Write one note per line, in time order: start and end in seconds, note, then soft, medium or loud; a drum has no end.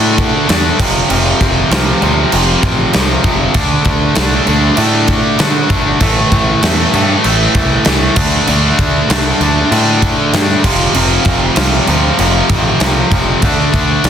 0.00 0.31 A2 loud
0.00 0.47 D3 loud
0.00 0.48 A3 loud
0.00 0.48 D4 loud
0.18 kick medium
0.18 crash medium
0.48 0.71 E2 medium
0.48 0.77 D3 medium
0.48 0.80 A3 medium
0.48 0.78 D4 loud
0.48 snare loud
0.48 crash medium
0.79 1.01 F1 medium
0.79 1.08 F2 loud
0.79 1.09 C3 loud
0.79 1.10 F3 loud
0.79 kick loud
0.79 crash loud
1.10 1.32 F1 loud
1.10 1.70 F2 loud
1.10 1.71 C3 loud
1.10 1.72 F3 loud
1.10 crash medium
1.41 1.62 F1 medium
1.41 kick medium
1.41 crash medium
1.71 1.93 C2 loud
1.71 2.00 F2 loud
1.71 2.01 C3 loud
1.71 2.02 F3 loud
1.71 snare loud
1.71 crash medium
2.01 2.24 D2 medium
2.01 2.30 F2 medium
2.01 2.31 C3 loud
2.01 2.32 F3 loud
2.01 crash medium
2.32 2.54 F1 loud
2.32 2.93 F2 loud
2.32 2.93 C3 loud
2.32 2.94 F3 loud
2.32 crash medium
2.63 2.85 A1 loud
2.63 kick medium
2.63 crash medium
2.93 3.16 C2 medium
2.93 3.22 F2 medium
2.93 3.23 C3 medium
2.93 3.23 F3 loud
2.93 snare loud
2.93 crash medium
3.23 3.46 F1 loud
3.23 3.53 F2 medium
3.23 3.53 C3 loud
3.23 3.54 F3 medium
3.23 kick medium
3.23 crash medium
3.54 3.77 D2 medium
3.54 4.14 D3 medium
3.54 4.16 A3 loud
3.54 4.15 D4 loud
3.54 kick loud
3.54 crash medium
3.85 4.07 D2 medium
3.85 kick loud
3.85 crash medium
4.15 4.39 C2 medium
4.15 4.45 D3 medium
4.15 4.46 A3 medium
4.15 4.46 D4 medium
4.15 snare loud
4.15 crash medium
4.46 4.69 D2 medium
4.46 4.75 D3 loud
4.46 4.77 A3 loud
4.46 4.77 D4 loud
4.46 crash medium
4.76 5.21 A2 loud
4.76 5.38 D3 medium
4.76 5.39 A3 loud
4.76 5.39 D4 loud
4.76 crash medium
5.08 kick medium
5.08 crash medium
5.39 5.69 D3 medium
5.39 5.61 D3 medium
5.39 5.70 A3 medium
5.39 5.70 D4 loud
5.39 snare loud
5.39 crash medium
5.70 5.92 G1 medium
5.70 5.99 D3 medium
5.70 6.01 A3 loud
5.70 6.00 D4 loud
5.70 kick medium
5.70 crash medium
6.00 6.23 A1 medium
6.00 6.62 A2 medium
6.00 6.62 E3 loud
6.00 6.63 A3 loud
6.00 kick loud
6.00 crash medium
6.32 6.54 A1 medium
6.32 kick medium
6.32 crash medium
6.63 6.85 E2 medium
6.63 6.92 A2 medium
6.63 6.93 E3 loud
6.63 6.94 A3 loud
6.63 snare loud
6.63 crash medium
6.93 7.16 G2 medium
6.93 7.23 A2 medium
6.93 7.23 E3 loud
6.93 7.25 A3 loud
6.93 crash medium
7.24 7.46 A1 loud
7.24 7.85 A2 medium
7.24 7.85 E3 loud
7.24 7.86 A3 loud
7.24 crash medium
7.55 7.77 C2 medium
7.55 kick medium
7.55 crash medium
7.85 8.08 C2 medium
7.85 8.15 A2 medium
7.85 8.15 E3 loud
7.85 8.18 A3 loud
7.85 snare loud
7.85 crash medium
8.16 8.39 D2 loud
8.16 8.46 D3 medium
8.16 8.48 A3 loud
8.16 8.48 D4 loud
8.16 kick loud
8.16 crash loud
8.47 8.70 D2 medium
8.47 9.08 D3 loud
8.47 9.10 A3 loud
8.47 9.09 D4 loud
8.47 crash medium
8.79 9.01 D2 medium
8.79 kick medium
8.79 crash medium
9.09 9.32 C2 loud
9.09 9.40 D3 medium
9.09 9.42 A3 medium
9.09 9.41 D4 loud
9.09 snare loud
9.09 crash medium
9.40 9.62 D2 medium
9.40 9.70 D3 medium
9.40 9.72 A3 loud
9.40 9.71 D4 medium
9.40 crash medium
9.71 10.15 A2 loud
9.71 10.32 D3 loud
9.71 10.33 A3 medium
9.71 10.33 D4 loud
9.71 crash medium
10.02 kick medium
10.02 crash medium
10.33 10.55 G2 medium
10.33 10.62 D3 medium
10.33 10.65 A3 loud
10.33 10.63 D4 loud
10.33 snare loud
10.33 crash medium
10.64 10.86 F1 loud
10.64 10.94 F2 medium
10.64 10.94 C3 loud
10.64 10.96 F3 loud
10.64 kick medium
10.64 crash loud
10.94 11.17 F1 medium
10.94 11.56 F2 loud
10.94 11.56 C3 loud
10.94 11.58 F3 loud
10.94 crash medium
11.25 11.47 F1 medium
11.25 kick medium
11.25 crash medium
11.56 11.79 C2 loud
11.56 11.86 F2 medium
11.56 11.87 C3 loud
11.56 11.88 F3 loud
11.56 snare loud
11.56 crash loud
11.87 12.10 D2 medium
11.87 12.17 F2 medium
11.87 12.18 C3 medium
11.87 12.18 F3 loud
11.87 crash medium
12.18 12.41 F1 loud
12.18 12.79 F2 loud
12.18 12.80 C3 loud
12.18 12.81 F3 medium
12.18 crash medium
12.49 12.72 A1 medium
12.49 kick medium
12.49 crash medium
12.80 13.02 C2 medium
12.80 13.11 F2 medium
12.80 13.11 C3 medium
12.80 13.12 F3 loud
12.80 snare loud
12.80 crash medium
13.11 13.33 F1 loud
13.11 13.41 F2 medium
13.11 13.41 C3 medium
13.11 13.42 F3 loud
13.11 kick medium
13.11 crash medium
13.42 13.65 D2 medium
13.42 14.04 D3 medium
13.42 14.04 A3 loud
13.42 14.04 D4 loud
13.42 kick loud
13.42 crash medium
13.74 13.95 D2 medium
13.74 kick medium
13.74 crash medium
14.04 14.10 C2 loud
14.04 14.10 D3 medium
14.04 14.10 A3 loud
14.04 14.10 D4 loud
14.04 snare loud
14.04 crash medium